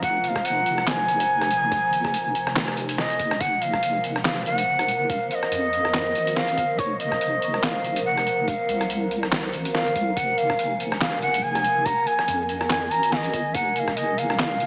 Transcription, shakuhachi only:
0.03 F#5
0.24 F#5
0.28 F5
0.45 F#5
0.87 G#5
2.98 D#5
3.41 F#5
3.62 F5
4.25 F5
4.46 F#5
5.10 F5
5.31 F5
5.35 D#5
6.36 F5
6.79 C#5
7.00 D#5
7.63 F5
8.05 F#5
8.48 F5
9.74 F5
10.17 F#5
10.38 F5
11.01 F5
11.22 F#5
11.43 G#5
11.85 A#5
12.07 G#5
12.70 G#5
12.91 A#5
13.12 D#5 F5
13.54 F#5
13.75 F5 F#5
13.97 D#5
14.18 F5

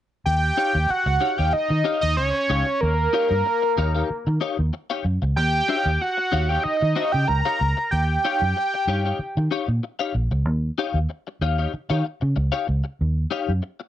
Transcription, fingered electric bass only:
0.26 D#2
0.75 D#2
0.90 muted fingered electric bass stroke
1.06 C#2
1.39 D#2
1.54 muted fingered electric bass stroke
1.70 D#3
2.03 D#2
2.19 C#2
2.50 C#2
2.83 D#2
3.31 G2
3.78 D#2
4.10 muted fingered electric bass stroke
4.27 D#3
4.59 D#2
5.05 F#2
5.22 C#2
5.36 D#2
5.86 D#2
6.33 D#2
6.65 muted fingered electric bass stroke
6.82 D#3
7.14 C#3
7.29 C#2
7.61 C#2
7.93 D#2
8.42 F#2
8.87 G2
9.19 muted fingered electric bass stroke
9.37 D#3
9.68 A#2
10.15 A#1
10.31 C#2
10.45 D#2
10.94 D#2
11.41 D#2
11.74 muted fingered electric bass stroke
11.90 D#3
12.22 C#3
12.37 C#2
12.69 C#2
13.01 D#2
13.49 F#2

